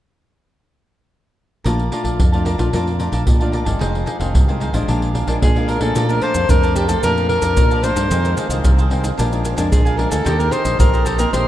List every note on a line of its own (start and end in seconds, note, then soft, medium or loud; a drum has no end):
1.64 1.88 A#1 loud
1.64 2.16 A#2 medium
1.64 1.81 A3 medium
1.64 1.81 D4 soft
1.64 1.82 F4 medium
1.64 1.90 A#4 medium
1.64 1.91 D5 medium
1.64 1.91 F5 medium
1.64 1.91 A5 medium
1.64 pandeiro medium
1.64 surdo soft
1.79 pandeiro soft
1.92 2.18 A3 medium
1.92 2.18 D4 soft
1.92 2.18 F4 medium
1.92 2.01 A#4 medium
1.92 2.01 D5 medium
1.92 2.01 F5 medium
1.92 2.02 A5 medium
1.92 pandeiro medium
2.04 2.16 A#1 medium
2.04 2.32 D5 soft
2.04 2.31 F5 soft
2.04 2.31 A5 soft
2.04 pandeiro medium
2.04 surdo soft
2.19 2.54 F2 medium
2.19 2.71 F2 soft
2.19 pandeiro medium
2.19 surdo medium
2.32 2.56 A3 medium
2.32 2.56 D4 medium
2.32 2.56 F4 medium
2.32 2.45 D5 soft
2.32 2.45 F5 soft
2.32 2.45 A5 soft
2.32 pandeiro soft
2.45 2.58 A#4 medium
2.45 2.58 D5 medium
2.45 2.58 F5 medium
2.45 2.57 A5 medium
2.45 pandeiro medium
2.58 2.71 A#1 medium
2.58 2.68 A3 medium
2.58 2.68 D4 medium
2.58 2.69 F4 medium
2.58 2.73 D5 soft
2.58 2.72 F5 soft
2.58 2.71 A5 soft
2.58 pandeiro medium
2.58 surdo soft
2.73 3.08 F2 medium
2.73 3.25 A#2 soft
2.73 2.90 A3 medium
2.73 2.90 D4 soft
2.73 2.90 F4 medium
2.73 2.98 A#4 medium
2.73 2.99 D5 medium
2.73 2.99 F5 medium
2.73 3.00 A5 medium
2.73 pandeiro medium
2.73 surdo medium
2.87 pandeiro soft
2.99 3.36 A3 soft
2.99 3.36 D4 medium
2.99 3.36 F4 medium
2.99 3.11 A#4 soft
2.99 3.12 D5 medium
2.99 3.12 F5 soft
2.99 3.12 A5 medium
2.99 pandeiro medium
3.12 3.24 A#1 medium
3.12 3.22 A#4 medium
3.12 3.22 D5 medium
3.12 3.22 F5 medium
3.12 3.23 A5 medium
3.12 pandeiro medium
3.12 surdo soft
3.27 3.78 F2 medium
3.27 3.61 A#2 medium
3.27 pandeiro medium
3.27 surdo medium
3.40 3.63 A3 medium
3.40 3.64 D4 medium
3.40 3.64 F4 medium
3.40 3.52 D5 soft
3.40 3.53 F5 soft
3.40 3.53 A5 soft
3.40 pandeiro soft
3.52 3.65 A#4 soft
3.52 3.66 D5 medium
3.52 3.65 F5 medium
3.52 3.64 A5 medium
3.52 pandeiro soft
3.65 3.78 G1 medium
3.65 4.03 D#3 medium
3.65 4.03 G#3 medium
3.65 4.03 C4 medium
3.65 3.80 D5 soft
3.65 3.79 F5 soft
3.65 3.79 A5 soft
3.65 pandeiro medium
3.65 surdo soft
3.79 4.04 F1 medium
3.79 4.32 F2 medium
3.79 4.05 D#4 medium
3.79 4.05 G#4 medium
3.79 4.06 C5 medium
3.79 4.06 F5 medium
3.79 pandeiro medium
3.79 surdo medium
3.95 pandeiro soft
4.06 4.16 D#4 medium
4.06 4.16 G#4 medium
4.06 4.16 C5 medium
4.06 4.17 F5 medium
4.06 pandeiro medium
4.20 4.32 F1 medium
4.20 4.43 D#3 medium
4.20 4.43 G#3 medium
4.20 4.44 C4 medium
4.20 4.47 G#4 soft
4.20 4.47 C5 soft
4.20 4.46 F5 soft
4.20 pandeiro medium
4.20 surdo soft
4.34 4.69 C2 medium
4.34 4.86 C3 soft
4.34 pandeiro medium
4.34 surdo loud
4.48 4.71 D#3 medium
4.48 4.71 G#3 medium
4.48 4.71 C4 medium
4.48 4.60 G#4 soft
4.48 4.60 C5 soft
4.48 4.60 F5 soft
4.48 pandeiro soft
4.60 4.73 D#4 medium
4.60 4.74 G#4 medium
4.60 4.73 C5 medium
4.60 4.72 F5 medium
4.60 pandeiro medium
4.73 4.85 A1 medium
4.73 5.24 F3 medium
4.73 5.24 G#3 medium
4.73 5.24 D4 medium
4.73 4.88 G#4 soft
4.73 4.87 C5 soft
4.73 4.87 F5 soft
4.73 pandeiro medium
4.73 surdo soft
4.88 5.22 A#1 medium
4.88 5.40 A#2 medium
4.88 5.13 D4 medium
4.88 5.14 A#4 medium
4.88 5.15 F5 medium
4.88 5.15 G#5 medium
4.88 pandeiro medium
4.88 surdo medium
5.02 pandeiro soft
5.14 5.27 D4 soft
5.14 5.27 A#4 medium
5.14 5.27 F5 medium
5.14 5.28 G#5 medium
5.14 pandeiro medium
5.14 surdo soft
5.27 5.39 A#1 medium
5.27 5.51 F3 medium
5.27 5.51 G#3 medium
5.27 5.51 D4 medium
5.27 5.37 D4 medium
5.27 5.38 A#4 medium
5.27 5.38 F5 medium
5.27 5.38 G#5 medium
5.27 pandeiro medium
5.27 surdo soft
5.42 5.93 F2 soft
5.42 5.76 A#2 medium
5.42 5.70 G#4 medium
5.42 pandeiro medium
5.42 surdo medium
5.55 5.78 F3 medium
5.55 5.78 G#3 medium
5.55 5.78 D4 medium
5.55 5.67 A#4 soft
5.55 5.68 F5 soft
5.55 5.68 G#5 soft
5.55 pandeiro soft
5.68 5.81 D4 medium
5.68 5.81 A#4 medium
5.68 5.81 F5 medium
5.68 5.80 G#5 medium
5.68 pandeiro medium
5.80 5.93 A#2 medium
5.80 6.08 F3 medium
5.80 6.08 A3 medium
5.80 6.08 D4 medium
5.80 6.12 A4 medium
5.80 5.94 A#4 soft
5.80 5.95 F5 soft
5.80 5.94 G#5 soft
5.80 pandeiro medium
5.80 surdo soft
5.95 6.47 A#2 medium
5.95 6.19 A#2 medium
5.95 6.21 A#4 medium
5.95 6.21 D5 medium
5.95 6.22 F5 medium
5.95 6.22 A5 medium
5.95 pandeiro medium
5.95 maracas medium
5.95 surdo medium
6.09 6.45 F3 medium
6.09 6.45 A3 medium
6.09 6.46 D4 medium
6.09 6.24 A#4 medium
6.09 pandeiro soft
6.09 maracas soft
6.22 6.31 A#4 medium
6.22 6.51 C5 medium
6.22 6.32 D5 medium
6.22 6.32 F5 medium
6.22 6.32 A5 medium
6.22 pandeiro medium
6.34 6.47 F2 medium
6.34 6.63 D5 soft
6.34 6.62 F5 soft
6.34 6.61 A5 soft
6.34 pandeiro medium
6.34 maracas medium
6.34 surdo soft
6.49 7.01 F2 soft
6.49 6.95 F2 medium
6.49 6.85 F3 soft
6.49 6.86 A3 soft
6.49 6.86 D4 soft
6.49 6.74 A#4 medium
6.49 pandeiro medium
6.49 maracas medium
6.49 surdo loud
6.63 6.75 D5 soft
6.63 6.76 F5 soft
6.63 6.76 A5 soft
6.63 pandeiro soft
6.63 maracas soft
6.75 6.89 G4 medium
6.75 6.88 A#4 medium
6.75 6.89 D5 medium
6.75 6.89 F5 medium
6.75 6.87 A5 medium
6.75 pandeiro medium
6.75 maracas medium
6.88 6.99 F3 medium
6.88 6.99 A3 medium
6.88 6.99 D4 medium
6.88 7.02 A4 medium
6.88 7.03 D5 soft
6.88 7.02 F5 soft
6.88 7.02 A5 soft
6.88 pandeiro medium
6.88 maracas medium
6.88 surdo soft
7.03 7.38 F2 medium
7.03 7.55 A#2 soft
7.03 7.40 F3 soft
7.03 7.40 A3 medium
7.03 7.40 D4 medium
7.03 7.28 A#4 medium
7.03 7.29 D5 medium
7.03 7.29 F5 medium
7.03 7.30 A5 medium
7.03 pandeiro medium
7.03 maracas medium
7.03 surdo medium
7.17 pandeiro soft
7.17 maracas soft
7.29 7.41 A#4 medium
7.29 7.85 A#4 medium
7.29 7.41 D5 medium
7.29 7.42 F5 medium
7.29 7.42 A5 medium
7.29 pandeiro medium
7.42 7.54 F2 medium
7.42 7.79 F3 medium
7.42 7.80 D4 medium
7.42 7.52 A#4 medium
7.42 7.52 D5 medium
7.42 7.52 F5 medium
7.42 7.53 A5 medium
7.42 pandeiro medium
7.42 maracas medium
7.42 surdo soft
7.57 8.09 F2 medium
7.57 7.91 A#2 medium
7.57 pandeiro medium
7.57 maracas medium
7.57 surdo medium
7.70 7.82 D5 soft
7.70 7.83 F5 soft
7.70 7.83 A5 soft
7.70 pandeiro soft
7.70 maracas soft
7.83 8.08 F3 medium
7.83 8.08 A3 medium
7.83 8.09 D4 medium
7.83 7.96 A#4 medium
7.83 8.37 C5 medium
7.83 7.96 D5 medium
7.83 7.96 F5 medium
7.83 7.95 A5 medium
7.83 pandeiro medium
7.83 maracas medium
7.96 8.08 G2 medium
7.96 8.10 D5 soft
7.96 8.10 F5 soft
7.96 8.09 A5 soft
7.96 pandeiro medium
7.96 maracas medium
7.96 surdo soft
8.10 8.33 F2 loud
8.10 8.62 F2 medium
8.10 8.20 D#3 medium
8.10 8.20 G#3 medium
8.10 8.20 C4 medium
8.10 8.36 D#4 medium
8.10 8.36 G#4 medium
8.10 8.37 C5 medium
8.10 8.37 F5 medium
8.10 pandeiro medium
8.10 maracas medium
8.10 surdo soft
8.25 8.47 D#3 medium
8.25 8.47 G#3 medium
8.25 8.48 C4 medium
8.25 pandeiro soft
8.25 maracas soft
8.37 8.46 D#4 medium
8.37 8.47 G#4 medium
8.37 8.47 C5 medium
8.37 8.47 F5 medium
8.37 pandeiro medium
8.37 maracas medium
8.49 8.62 C2 medium
8.49 8.87 D#3 medium
8.49 8.87 G#3 medium
8.49 8.87 C4 medium
8.49 8.77 G#4 soft
8.49 8.77 C5 soft
8.49 8.76 F5 soft
8.49 pandeiro medium
8.49 maracas medium
8.49 surdo soft
8.64 9.10 C2 loud
8.64 9.16 C3 soft
8.64 pandeiro medium
8.64 maracas medium
8.64 surdo medium
8.78 8.90 G#4 soft
8.78 8.91 C5 soft
8.78 8.91 F5 soft
8.78 pandeiro soft
8.78 maracas soft
8.90 9.09 D#3 medium
8.90 9.09 G#3 soft
8.90 9.09 C4 medium
8.90 9.03 D#4 medium
8.90 9.04 G#4 medium
8.90 9.03 C5 medium
8.90 9.02 F5 medium
8.90 pandeiro medium
9.03 9.18 G#4 soft
9.03 9.17 C5 soft
9.03 9.16 F5 soft
9.03 pandeiro medium
9.03 maracas medium
9.03 surdo soft
9.17 9.53 A#1 medium
9.17 9.69 A#2 medium
9.17 9.27 F3 medium
9.17 9.28 G#3 medium
9.17 9.42 D4 medium
9.17 9.28 D4 medium
9.17 9.43 A#4 medium
9.17 9.44 F5 medium
9.17 9.45 G#5 medium
9.17 pandeiro medium
9.17 maracas medium
9.17 surdo soft
9.31 9.54 F3 medium
9.31 9.54 G#3 medium
9.31 9.55 D4 medium
9.31 pandeiro soft
9.31 maracas soft
9.43 9.55 D4 medium
9.43 9.56 A#4 medium
9.43 9.56 F5 medium
9.43 9.57 G#5 medium
9.43 pandeiro medium
9.43 maracas medium
9.56 9.69 F2 medium
9.56 9.94 F3 medium
9.56 9.94 G#3 medium
9.56 9.67 D4 medium
9.56 9.95 D4 medium
9.56 9.67 A#4 medium
9.56 9.67 F5 medium
9.56 9.67 G#5 medium
9.56 pandeiro medium
9.56 maracas medium
9.56 surdo soft
9.72 10.06 A#1 medium
9.72 10.23 F2 medium
9.72 9.99 G#4 medium
9.72 pandeiro medium
9.72 maracas medium
9.72 surdo medium
9.85 9.97 A#4 soft
9.85 9.98 F5 soft
9.85 9.98 G#5 medium
9.85 pandeiro soft
9.85 maracas soft
9.97 10.23 F3 medium
9.97 10.23 G#3 medium
9.97 10.11 D4 soft
9.97 10.24 D4 medium
9.97 10.12 A#4 medium
9.97 10.11 A#4 medium
9.97 10.10 F5 medium
9.97 10.09 G#5 medium
9.97 pandeiro medium
10.10 10.23 D2 medium
10.10 10.41 A4 medium
10.10 10.25 A#4 soft
10.10 10.24 F5 soft
10.10 10.24 G#5 soft
10.10 pandeiro medium
10.10 maracas medium
10.10 surdo soft
10.25 10.49 D#2 loud
10.25 10.77 D#3 medium
10.25 10.35 A#3 medium
10.25 10.35 C4 medium
10.25 10.50 D#4 medium
10.25 10.50 G4 medium
10.25 10.36 G4 medium
10.25 10.51 C5 medium
10.25 10.51 D#5 medium
10.25 pandeiro medium
10.25 maracas medium
10.25 surdo medium
10.39 10.75 A#3 medium
10.39 10.76 C4 medium
10.39 10.76 G4 medium
10.39 10.53 A#4 medium
10.39 pandeiro soft
10.39 maracas soft
10.51 10.61 D#4 medium
10.51 10.61 G4 medium
10.51 10.79 C5 medium
10.51 10.62 C5 medium
10.51 10.62 D#5 medium
10.51 pandeiro medium
10.51 maracas medium
10.64 10.77 A#1 medium
10.64 10.92 G4 soft
10.64 10.91 C5 soft
10.64 10.91 D#5 soft
10.64 pandeiro medium
10.64 maracas medium
10.64 surdo soft
10.79 11.25 A#1 medium
10.79 11.31 A#2 soft
10.79 11.05 A#3 soft
10.79 11.05 C4 soft
10.79 11.05 G4 soft
10.79 11.07 A#4 medium
10.79 pandeiro medium
10.79 maracas medium
10.79 surdo loud
10.93 11.05 G4 soft
10.93 11.05 C5 soft
10.93 11.06 D#5 soft
10.93 pandeiro soft
10.93 maracas soft
11.05 11.18 D#4 medium
11.05 11.19 G4 medium
11.05 11.19 A4 medium
11.05 11.18 C5 medium
11.05 11.17 D#5 medium
11.05 pandeiro medium
11.05 maracas medium
11.18 11.28 A#3 medium
11.18 11.29 C4 medium
11.18 11.29 G4 medium
11.18 11.32 G4 soft
11.18 11.32 A#4 medium
11.18 11.32 C5 soft
11.18 11.31 D#5 soft
11.18 pandeiro medium
11.18 maracas medium
11.18 surdo soft
11.33 11.48 A#1 medium
11.33 11.48 D#3 medium
11.33 11.48 A#3 medium
11.33 11.48 C4 medium
11.33 11.48 D#4 medium
11.33 11.48 G4 medium
11.33 11.48 C5 medium
11.33 11.48 D#5 medium
11.33 pandeiro medium
11.33 maracas medium
11.33 surdo medium